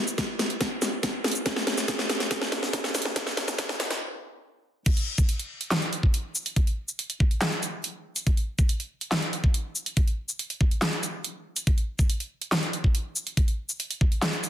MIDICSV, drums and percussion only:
0, 0, Header, 1, 2, 480
1, 0, Start_track
1, 0, Tempo, 425532
1, 1643, Time_signature, 4, 2, 24, 8
1, 16349, End_track
2, 0, Start_track
2, 0, Title_t, "Drums"
2, 85, Note_on_c, 9, 82, 57
2, 198, Note_off_c, 9, 82, 0
2, 204, Note_on_c, 9, 36, 103
2, 204, Note_on_c, 9, 38, 83
2, 204, Note_on_c, 9, 42, 75
2, 316, Note_off_c, 9, 36, 0
2, 317, Note_off_c, 9, 38, 0
2, 317, Note_off_c, 9, 42, 0
2, 444, Note_on_c, 9, 38, 83
2, 444, Note_on_c, 9, 42, 53
2, 557, Note_off_c, 9, 38, 0
2, 557, Note_off_c, 9, 42, 0
2, 565, Note_on_c, 9, 42, 36
2, 678, Note_off_c, 9, 42, 0
2, 684, Note_on_c, 9, 36, 92
2, 684, Note_on_c, 9, 38, 87
2, 684, Note_on_c, 9, 42, 81
2, 796, Note_off_c, 9, 36, 0
2, 796, Note_off_c, 9, 38, 0
2, 796, Note_off_c, 9, 42, 0
2, 924, Note_on_c, 9, 38, 87
2, 924, Note_on_c, 9, 42, 49
2, 924, Note_on_c, 9, 82, 54
2, 1037, Note_off_c, 9, 38, 0
2, 1037, Note_off_c, 9, 42, 0
2, 1037, Note_off_c, 9, 82, 0
2, 1164, Note_on_c, 9, 36, 92
2, 1164, Note_on_c, 9, 38, 90
2, 1164, Note_on_c, 9, 42, 79
2, 1276, Note_off_c, 9, 38, 0
2, 1276, Note_off_c, 9, 42, 0
2, 1277, Note_off_c, 9, 36, 0
2, 1404, Note_on_c, 9, 38, 86
2, 1404, Note_on_c, 9, 42, 44
2, 1444, Note_off_c, 9, 42, 0
2, 1444, Note_on_c, 9, 42, 60
2, 1484, Note_off_c, 9, 42, 0
2, 1484, Note_on_c, 9, 42, 72
2, 1516, Note_off_c, 9, 38, 0
2, 1525, Note_on_c, 9, 82, 52
2, 1596, Note_off_c, 9, 42, 0
2, 1637, Note_off_c, 9, 82, 0
2, 1644, Note_on_c, 9, 36, 100
2, 1644, Note_on_c, 9, 38, 88
2, 1644, Note_on_c, 9, 42, 79
2, 1757, Note_off_c, 9, 36, 0
2, 1757, Note_off_c, 9, 38, 0
2, 1757, Note_off_c, 9, 42, 0
2, 1764, Note_on_c, 9, 38, 76
2, 1877, Note_off_c, 9, 38, 0
2, 1884, Note_on_c, 9, 38, 93
2, 1884, Note_on_c, 9, 42, 53
2, 1996, Note_off_c, 9, 38, 0
2, 1996, Note_off_c, 9, 42, 0
2, 2005, Note_on_c, 9, 38, 82
2, 2005, Note_on_c, 9, 82, 58
2, 2118, Note_off_c, 9, 38, 0
2, 2118, Note_off_c, 9, 82, 0
2, 2124, Note_on_c, 9, 36, 101
2, 2124, Note_on_c, 9, 38, 89
2, 2124, Note_on_c, 9, 42, 78
2, 2236, Note_off_c, 9, 38, 0
2, 2236, Note_off_c, 9, 42, 0
2, 2237, Note_off_c, 9, 36, 0
2, 2244, Note_on_c, 9, 38, 82
2, 2357, Note_off_c, 9, 38, 0
2, 2363, Note_on_c, 9, 38, 94
2, 2363, Note_on_c, 9, 42, 54
2, 2476, Note_off_c, 9, 38, 0
2, 2476, Note_off_c, 9, 42, 0
2, 2485, Note_on_c, 9, 38, 81
2, 2485, Note_on_c, 9, 42, 36
2, 2597, Note_off_c, 9, 38, 0
2, 2597, Note_off_c, 9, 42, 0
2, 2604, Note_on_c, 9, 36, 98
2, 2604, Note_on_c, 9, 38, 92
2, 2604, Note_on_c, 9, 42, 77
2, 2716, Note_off_c, 9, 38, 0
2, 2716, Note_off_c, 9, 42, 0
2, 2717, Note_off_c, 9, 36, 0
2, 2724, Note_on_c, 9, 38, 86
2, 2837, Note_off_c, 9, 38, 0
2, 2843, Note_on_c, 9, 38, 92
2, 2843, Note_on_c, 9, 42, 51
2, 2956, Note_off_c, 9, 38, 0
2, 2956, Note_off_c, 9, 42, 0
2, 2964, Note_on_c, 9, 38, 84
2, 3077, Note_off_c, 9, 38, 0
2, 3083, Note_on_c, 9, 38, 98
2, 3083, Note_on_c, 9, 42, 81
2, 3084, Note_on_c, 9, 36, 97
2, 3196, Note_off_c, 9, 38, 0
2, 3196, Note_off_c, 9, 42, 0
2, 3197, Note_off_c, 9, 36, 0
2, 3204, Note_on_c, 9, 38, 84
2, 3317, Note_off_c, 9, 38, 0
2, 3324, Note_on_c, 9, 38, 93
2, 3324, Note_on_c, 9, 42, 46
2, 3324, Note_on_c, 9, 82, 80
2, 3364, Note_off_c, 9, 42, 0
2, 3364, Note_on_c, 9, 42, 63
2, 3404, Note_off_c, 9, 42, 0
2, 3404, Note_on_c, 9, 42, 82
2, 3436, Note_off_c, 9, 38, 0
2, 3436, Note_off_c, 9, 82, 0
2, 3445, Note_on_c, 9, 38, 87
2, 3516, Note_off_c, 9, 42, 0
2, 3558, Note_off_c, 9, 38, 0
2, 3564, Note_on_c, 9, 36, 102
2, 3564, Note_on_c, 9, 38, 100
2, 3564, Note_on_c, 9, 42, 86
2, 3677, Note_off_c, 9, 36, 0
2, 3677, Note_off_c, 9, 38, 0
2, 3677, Note_off_c, 9, 42, 0
2, 3685, Note_on_c, 9, 38, 82
2, 3798, Note_off_c, 9, 38, 0
2, 3804, Note_on_c, 9, 38, 100
2, 3804, Note_on_c, 9, 42, 52
2, 3917, Note_off_c, 9, 38, 0
2, 3917, Note_off_c, 9, 42, 0
2, 3925, Note_on_c, 9, 38, 94
2, 3925, Note_on_c, 9, 82, 53
2, 4038, Note_off_c, 9, 38, 0
2, 4038, Note_off_c, 9, 82, 0
2, 4044, Note_on_c, 9, 36, 105
2, 4044, Note_on_c, 9, 38, 101
2, 4044, Note_on_c, 9, 42, 81
2, 4157, Note_off_c, 9, 36, 0
2, 4157, Note_off_c, 9, 38, 0
2, 4157, Note_off_c, 9, 42, 0
2, 4165, Note_on_c, 9, 38, 87
2, 4278, Note_off_c, 9, 38, 0
2, 4284, Note_on_c, 9, 38, 106
2, 4284, Note_on_c, 9, 42, 54
2, 4397, Note_off_c, 9, 38, 0
2, 4397, Note_off_c, 9, 42, 0
2, 4405, Note_on_c, 9, 38, 89
2, 4405, Note_on_c, 9, 42, 37
2, 4518, Note_off_c, 9, 38, 0
2, 4518, Note_off_c, 9, 42, 0
2, 5484, Note_on_c, 9, 36, 126
2, 5484, Note_on_c, 9, 42, 80
2, 5484, Note_on_c, 9, 49, 97
2, 5597, Note_off_c, 9, 36, 0
2, 5597, Note_off_c, 9, 42, 0
2, 5597, Note_off_c, 9, 49, 0
2, 5605, Note_on_c, 9, 42, 54
2, 5718, Note_off_c, 9, 42, 0
2, 5845, Note_on_c, 9, 36, 105
2, 5845, Note_on_c, 9, 82, 54
2, 5958, Note_off_c, 9, 36, 0
2, 5958, Note_off_c, 9, 82, 0
2, 5964, Note_on_c, 9, 42, 79
2, 6077, Note_off_c, 9, 42, 0
2, 6085, Note_on_c, 9, 42, 51
2, 6198, Note_off_c, 9, 42, 0
2, 6325, Note_on_c, 9, 42, 36
2, 6438, Note_off_c, 9, 42, 0
2, 6445, Note_on_c, 9, 38, 117
2, 6445, Note_on_c, 9, 39, 94
2, 6445, Note_on_c, 9, 42, 84
2, 6558, Note_off_c, 9, 38, 0
2, 6558, Note_off_c, 9, 39, 0
2, 6558, Note_off_c, 9, 42, 0
2, 6566, Note_on_c, 9, 42, 38
2, 6679, Note_off_c, 9, 42, 0
2, 6685, Note_on_c, 9, 42, 52
2, 6798, Note_off_c, 9, 42, 0
2, 6805, Note_on_c, 9, 36, 60
2, 6918, Note_off_c, 9, 36, 0
2, 6925, Note_on_c, 9, 42, 84
2, 7038, Note_off_c, 9, 42, 0
2, 7165, Note_on_c, 9, 82, 78
2, 7278, Note_off_c, 9, 82, 0
2, 7286, Note_on_c, 9, 42, 60
2, 7399, Note_off_c, 9, 42, 0
2, 7404, Note_on_c, 9, 36, 127
2, 7405, Note_on_c, 9, 42, 76
2, 7517, Note_off_c, 9, 36, 0
2, 7518, Note_off_c, 9, 42, 0
2, 7526, Note_on_c, 9, 42, 49
2, 7639, Note_off_c, 9, 42, 0
2, 7765, Note_on_c, 9, 82, 54
2, 7878, Note_off_c, 9, 82, 0
2, 7885, Note_on_c, 9, 42, 77
2, 7997, Note_off_c, 9, 42, 0
2, 8006, Note_on_c, 9, 42, 53
2, 8118, Note_off_c, 9, 42, 0
2, 8124, Note_on_c, 9, 36, 109
2, 8237, Note_off_c, 9, 36, 0
2, 8245, Note_on_c, 9, 42, 34
2, 8358, Note_off_c, 9, 42, 0
2, 8364, Note_on_c, 9, 38, 125
2, 8364, Note_on_c, 9, 39, 96
2, 8364, Note_on_c, 9, 42, 80
2, 8477, Note_off_c, 9, 38, 0
2, 8477, Note_off_c, 9, 39, 0
2, 8477, Note_off_c, 9, 42, 0
2, 8485, Note_on_c, 9, 42, 38
2, 8598, Note_off_c, 9, 42, 0
2, 8604, Note_on_c, 9, 42, 49
2, 8604, Note_on_c, 9, 82, 48
2, 8717, Note_off_c, 9, 42, 0
2, 8717, Note_off_c, 9, 82, 0
2, 8844, Note_on_c, 9, 42, 80
2, 8957, Note_off_c, 9, 42, 0
2, 9205, Note_on_c, 9, 42, 56
2, 9205, Note_on_c, 9, 82, 49
2, 9318, Note_off_c, 9, 42, 0
2, 9318, Note_off_c, 9, 82, 0
2, 9324, Note_on_c, 9, 36, 127
2, 9325, Note_on_c, 9, 42, 75
2, 9437, Note_off_c, 9, 36, 0
2, 9437, Note_off_c, 9, 42, 0
2, 9446, Note_on_c, 9, 42, 46
2, 9558, Note_off_c, 9, 42, 0
2, 9685, Note_on_c, 9, 36, 118
2, 9686, Note_on_c, 9, 82, 50
2, 9798, Note_off_c, 9, 36, 0
2, 9798, Note_off_c, 9, 82, 0
2, 9805, Note_on_c, 9, 42, 77
2, 9918, Note_off_c, 9, 42, 0
2, 9925, Note_on_c, 9, 42, 47
2, 10038, Note_off_c, 9, 42, 0
2, 10166, Note_on_c, 9, 42, 37
2, 10279, Note_off_c, 9, 42, 0
2, 10284, Note_on_c, 9, 38, 127
2, 10284, Note_on_c, 9, 39, 94
2, 10284, Note_on_c, 9, 42, 76
2, 10397, Note_off_c, 9, 38, 0
2, 10397, Note_off_c, 9, 39, 0
2, 10397, Note_off_c, 9, 42, 0
2, 10405, Note_on_c, 9, 42, 37
2, 10518, Note_off_c, 9, 42, 0
2, 10524, Note_on_c, 9, 42, 48
2, 10637, Note_off_c, 9, 42, 0
2, 10645, Note_on_c, 9, 36, 66
2, 10758, Note_off_c, 9, 36, 0
2, 10764, Note_on_c, 9, 42, 77
2, 10877, Note_off_c, 9, 42, 0
2, 11004, Note_on_c, 9, 82, 77
2, 11117, Note_off_c, 9, 82, 0
2, 11125, Note_on_c, 9, 42, 55
2, 11238, Note_off_c, 9, 42, 0
2, 11244, Note_on_c, 9, 36, 127
2, 11244, Note_on_c, 9, 42, 74
2, 11356, Note_off_c, 9, 42, 0
2, 11357, Note_off_c, 9, 36, 0
2, 11365, Note_on_c, 9, 42, 47
2, 11478, Note_off_c, 9, 42, 0
2, 11605, Note_on_c, 9, 82, 53
2, 11718, Note_off_c, 9, 82, 0
2, 11724, Note_on_c, 9, 42, 71
2, 11837, Note_off_c, 9, 42, 0
2, 11845, Note_on_c, 9, 42, 50
2, 11958, Note_off_c, 9, 42, 0
2, 11964, Note_on_c, 9, 36, 113
2, 12077, Note_off_c, 9, 36, 0
2, 12085, Note_on_c, 9, 42, 34
2, 12198, Note_off_c, 9, 42, 0
2, 12204, Note_on_c, 9, 38, 127
2, 12204, Note_on_c, 9, 39, 88
2, 12204, Note_on_c, 9, 42, 77
2, 12317, Note_off_c, 9, 38, 0
2, 12317, Note_off_c, 9, 39, 0
2, 12317, Note_off_c, 9, 42, 0
2, 12325, Note_on_c, 9, 42, 35
2, 12438, Note_off_c, 9, 42, 0
2, 12444, Note_on_c, 9, 42, 51
2, 12444, Note_on_c, 9, 82, 50
2, 12557, Note_off_c, 9, 42, 0
2, 12557, Note_off_c, 9, 82, 0
2, 12684, Note_on_c, 9, 42, 73
2, 12796, Note_off_c, 9, 42, 0
2, 13045, Note_on_c, 9, 42, 55
2, 13045, Note_on_c, 9, 82, 48
2, 13157, Note_off_c, 9, 42, 0
2, 13157, Note_off_c, 9, 82, 0
2, 13164, Note_on_c, 9, 36, 122
2, 13164, Note_on_c, 9, 42, 76
2, 13277, Note_off_c, 9, 36, 0
2, 13277, Note_off_c, 9, 42, 0
2, 13285, Note_on_c, 9, 42, 47
2, 13397, Note_off_c, 9, 42, 0
2, 13525, Note_on_c, 9, 36, 109
2, 13525, Note_on_c, 9, 82, 56
2, 13638, Note_off_c, 9, 36, 0
2, 13638, Note_off_c, 9, 82, 0
2, 13644, Note_on_c, 9, 42, 75
2, 13757, Note_off_c, 9, 42, 0
2, 13765, Note_on_c, 9, 42, 48
2, 13878, Note_off_c, 9, 42, 0
2, 14004, Note_on_c, 9, 42, 34
2, 14117, Note_off_c, 9, 42, 0
2, 14123, Note_on_c, 9, 38, 120
2, 14123, Note_on_c, 9, 39, 85
2, 14123, Note_on_c, 9, 42, 74
2, 14236, Note_off_c, 9, 38, 0
2, 14236, Note_off_c, 9, 39, 0
2, 14236, Note_off_c, 9, 42, 0
2, 14244, Note_on_c, 9, 42, 36
2, 14357, Note_off_c, 9, 42, 0
2, 14364, Note_on_c, 9, 42, 49
2, 14477, Note_off_c, 9, 42, 0
2, 14485, Note_on_c, 9, 36, 63
2, 14598, Note_off_c, 9, 36, 0
2, 14604, Note_on_c, 9, 42, 74
2, 14717, Note_off_c, 9, 42, 0
2, 14844, Note_on_c, 9, 82, 75
2, 14956, Note_off_c, 9, 82, 0
2, 14965, Note_on_c, 9, 42, 57
2, 15078, Note_off_c, 9, 42, 0
2, 15084, Note_on_c, 9, 36, 123
2, 15084, Note_on_c, 9, 42, 75
2, 15197, Note_off_c, 9, 36, 0
2, 15197, Note_off_c, 9, 42, 0
2, 15205, Note_on_c, 9, 42, 46
2, 15318, Note_off_c, 9, 42, 0
2, 15445, Note_on_c, 9, 82, 58
2, 15558, Note_off_c, 9, 82, 0
2, 15564, Note_on_c, 9, 42, 76
2, 15677, Note_off_c, 9, 42, 0
2, 15685, Note_on_c, 9, 42, 52
2, 15798, Note_off_c, 9, 42, 0
2, 15804, Note_on_c, 9, 36, 104
2, 15917, Note_off_c, 9, 36, 0
2, 15925, Note_on_c, 9, 42, 35
2, 16038, Note_off_c, 9, 42, 0
2, 16044, Note_on_c, 9, 38, 116
2, 16044, Note_on_c, 9, 39, 86
2, 16044, Note_on_c, 9, 42, 81
2, 16157, Note_off_c, 9, 38, 0
2, 16157, Note_off_c, 9, 39, 0
2, 16157, Note_off_c, 9, 42, 0
2, 16165, Note_on_c, 9, 42, 38
2, 16278, Note_off_c, 9, 42, 0
2, 16284, Note_on_c, 9, 42, 48
2, 16284, Note_on_c, 9, 82, 51
2, 16349, Note_off_c, 9, 42, 0
2, 16349, Note_off_c, 9, 82, 0
2, 16349, End_track
0, 0, End_of_file